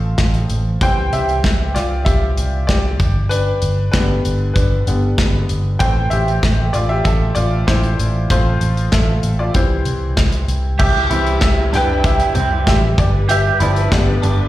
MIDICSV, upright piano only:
0, 0, Header, 1, 2, 480
1, 0, Start_track
1, 0, Key_signature, 0, "major"
1, 0, Tempo, 624350
1, 623, Time_signature, 4, 2, 24, 8
1, 11135, End_track
2, 0, Start_track
2, 0, Title_t, "Upright piano"
2, 0, Program_c, 0, 0
2, 0, Control_c, 0, 64, 127
2, 0, Note_on_c, 0, 53, 45
2, 0, Note_on_c, 0, 57, 44
2, 0, Note_on_c, 0, 60, 49
2, 0, Note_on_c, 0, 65, 53
2, 0, Note_on_c, 0, 69, 51
2, 0, Note_on_c, 0, 72, 66
2, 0, Note_on_c, 0, 77, 61
2, 108, Note_off_c, 0, 53, 0
2, 110, Note_off_c, 0, 57, 0
2, 114, Note_off_c, 0, 60, 0
2, 348, Note_off_c, 0, 77, 0
2, 354, Note_off_c, 0, 69, 0
2, 625, Note_on_c, 0, 52, 48
2, 628, Note_on_c, 0, 55, 45
2, 633, Note_off_c, 0, 65, 0
2, 633, Note_off_c, 0, 72, 0
2, 633, Control_c, 0, 64, 0
2, 633, Note_on_c, 0, 60, 53
2, 633, Note_on_c, 0, 72, 78
2, 637, Note_on_c, 0, 79, 91
2, 767, Control_c, 0, 64, 127
2, 852, Note_off_c, 0, 72, 0
2, 868, Note_on_c, 0, 76, 78
2, 871, Note_on_c, 0, 67, 63
2, 877, Note_off_c, 0, 79, 0
2, 944, Note_off_c, 0, 52, 0
2, 945, Note_off_c, 0, 55, 0
2, 948, Note_off_c, 0, 60, 0
2, 1316, Note_off_c, 0, 67, 0
2, 1342, Note_on_c, 0, 74, 68
2, 1350, Note_on_c, 0, 65, 59
2, 1360, Note_off_c, 0, 76, 0
2, 1396, Note_off_c, 0, 74, 0
2, 1403, Note_off_c, 0, 65, 0
2, 1575, Note_on_c, 0, 76, 80
2, 1584, Note_on_c, 0, 67, 60
2, 2033, Note_off_c, 0, 67, 0
2, 2054, Note_on_c, 0, 74, 72
2, 2065, Note_on_c, 0, 67, 53
2, 2073, Note_off_c, 0, 76, 0
2, 2313, Control_c, 0, 64, 0
2, 2441, Control_c, 0, 64, 127
2, 2513, Note_off_c, 0, 67, 0
2, 2532, Note_on_c, 0, 71, 82
2, 2543, Note_on_c, 0, 62, 62
2, 2553, Note_off_c, 0, 74, 0
2, 2992, Note_off_c, 0, 62, 0
2, 2999, Note_off_c, 0, 71, 0
2, 3010, Note_on_c, 0, 71, 74
2, 3013, Note_on_c, 0, 50, 49
2, 3016, Note_on_c, 0, 55, 40
2, 3022, Note_on_c, 0, 59, 50
2, 3025, Note_on_c, 0, 62, 50
2, 3473, Note_off_c, 0, 62, 0
2, 3476, Note_off_c, 0, 71, 0
2, 3487, Note_on_c, 0, 71, 53
2, 3504, Note_on_c, 0, 62, 44
2, 3733, Note_off_c, 0, 55, 0
2, 3736, Note_off_c, 0, 50, 0
2, 3739, Note_off_c, 0, 59, 0
2, 3744, Note_on_c, 0, 55, 39
2, 3747, Note_on_c, 0, 50, 39
2, 3750, Note_on_c, 0, 59, 46
2, 3959, Note_off_c, 0, 55, 0
2, 3961, Note_off_c, 0, 50, 0
2, 3963, Note_off_c, 0, 59, 0
2, 4184, Note_off_c, 0, 71, 0
2, 4192, Note_off_c, 0, 62, 0
2, 4454, Note_on_c, 0, 79, 93
2, 4457, Note_on_c, 0, 52, 51
2, 4466, Note_on_c, 0, 57, 47
2, 4470, Note_on_c, 0, 60, 54
2, 4472, Note_on_c, 0, 72, 74
2, 4473, Control_c, 0, 64, 0
2, 4606, Control_c, 0, 64, 127
2, 4691, Note_off_c, 0, 72, 0
2, 4691, Note_on_c, 0, 76, 89
2, 4705, Note_off_c, 0, 79, 0
2, 4712, Note_on_c, 0, 67, 68
2, 4779, Note_off_c, 0, 52, 0
2, 4783, Note_off_c, 0, 57, 0
2, 4786, Note_off_c, 0, 60, 0
2, 5156, Note_off_c, 0, 67, 0
2, 5174, Note_on_c, 0, 74, 78
2, 5191, Note_off_c, 0, 76, 0
2, 5192, Note_on_c, 0, 65, 57
2, 5289, Note_off_c, 0, 74, 0
2, 5299, Note_off_c, 0, 65, 0
2, 5299, Note_on_c, 0, 76, 83
2, 5315, Note_on_c, 0, 67, 64
2, 5403, Note_off_c, 0, 76, 0
2, 5415, Note_on_c, 0, 76, 84
2, 5421, Note_off_c, 0, 67, 0
2, 5435, Note_on_c, 0, 69, 68
2, 5648, Note_on_c, 0, 74, 84
2, 5652, Note_off_c, 0, 69, 0
2, 5662, Note_on_c, 0, 65, 59
2, 5666, Note_off_c, 0, 76, 0
2, 5885, Note_off_c, 0, 65, 0
2, 5898, Note_on_c, 0, 72, 70
2, 5903, Note_off_c, 0, 74, 0
2, 5913, Note_on_c, 0, 64, 55
2, 6357, Note_off_c, 0, 64, 0
2, 6372, Note_off_c, 0, 72, 0
2, 6383, Note_on_c, 0, 53, 50
2, 6383, Note_on_c, 0, 72, 84
2, 6389, Note_on_c, 0, 57, 45
2, 6391, Control_c, 0, 64, 0
2, 6394, Note_on_c, 0, 60, 56
2, 6394, Note_on_c, 0, 65, 69
2, 6518, Control_c, 0, 64, 127
2, 6837, Note_off_c, 0, 65, 0
2, 6857, Note_on_c, 0, 76, 72
2, 6862, Note_on_c, 0, 69, 56
2, 6877, Note_off_c, 0, 72, 0
2, 7197, Note_off_c, 0, 69, 0
2, 7221, Note_on_c, 0, 74, 66
2, 7228, Note_on_c, 0, 65, 49
2, 7230, Note_off_c, 0, 76, 0
2, 7312, Note_off_c, 0, 53, 0
2, 7315, Note_off_c, 0, 57, 0
2, 7317, Note_off_c, 0, 60, 0
2, 7337, Note_off_c, 0, 65, 0
2, 7340, Note_on_c, 0, 52, 44
2, 7340, Note_on_c, 0, 72, 58
2, 7342, Note_on_c, 0, 55, 42
2, 7345, Note_off_c, 0, 74, 0
2, 7346, Note_on_c, 0, 64, 44
2, 7348, Note_on_c, 0, 60, 50
2, 7351, Control_c, 0, 64, 0
2, 7502, Control_c, 0, 64, 127
2, 8030, Note_off_c, 0, 72, 0
2, 8031, Note_off_c, 0, 52, 0
2, 8031, Note_off_c, 0, 55, 0
2, 8034, Note_off_c, 0, 60, 0
2, 8034, Note_off_c, 0, 64, 0
2, 8296, Note_on_c, 0, 76, 83
2, 8310, Note_on_c, 0, 67, 69
2, 8313, Control_c, 0, 64, 0
2, 8463, Control_c, 0, 64, 127
2, 8541, Note_on_c, 0, 52, 45
2, 8544, Note_on_c, 0, 55, 46
2, 8550, Note_on_c, 0, 60, 56
2, 8755, Note_off_c, 0, 67, 0
2, 8781, Note_off_c, 0, 76, 0
2, 8793, Note_on_c, 0, 76, 81
2, 8797, Note_on_c, 0, 67, 66
2, 9013, Note_off_c, 0, 67, 0
2, 9034, Note_off_c, 0, 76, 0
2, 9036, Note_on_c, 0, 79, 96
2, 9043, Note_on_c, 0, 71, 72
2, 9257, Note_off_c, 0, 71, 0
2, 9269, Note_on_c, 0, 76, 88
2, 9271, Note_on_c, 0, 67, 68
2, 9276, Note_off_c, 0, 79, 0
2, 9716, Note_off_c, 0, 67, 0
2, 9737, Note_off_c, 0, 76, 0
2, 9747, Note_on_c, 0, 67, 61
2, 9748, Note_on_c, 0, 76, 75
2, 9951, Note_off_c, 0, 52, 0
2, 9953, Note_off_c, 0, 55, 0
2, 9956, Note_off_c, 0, 60, 0
2, 9968, Note_off_c, 0, 67, 0
2, 9988, Note_on_c, 0, 74, 73
2, 9990, Note_on_c, 0, 67, 56
2, 9992, Note_off_c, 0, 76, 0
2, 9994, Control_c, 0, 64, 0
2, 10041, Note_off_c, 0, 74, 0
2, 10044, Note_off_c, 0, 67, 0
2, 10108, Control_c, 0, 64, 127
2, 10228, Note_on_c, 0, 76, 94
2, 10231, Note_on_c, 0, 67, 74
2, 10281, Note_off_c, 0, 76, 0
2, 10284, Note_off_c, 0, 67, 0
2, 10469, Note_on_c, 0, 53, 65
2, 10469, Note_on_c, 0, 74, 68
2, 10689, Note_off_c, 0, 53, 0
2, 10689, Note_off_c, 0, 74, 0
2, 10697, Note_on_c, 0, 50, 52
2, 10697, Note_on_c, 0, 55, 45
2, 10701, Note_on_c, 0, 59, 52
2, 10701, Note_on_c, 0, 74, 66
2, 10706, Note_on_c, 0, 67, 52
2, 11135, Note_off_c, 0, 50, 0
2, 11135, Note_off_c, 0, 55, 0
2, 11135, Note_off_c, 0, 59, 0
2, 11135, Note_off_c, 0, 67, 0
2, 11135, Note_off_c, 0, 74, 0
2, 11135, End_track
0, 0, End_of_file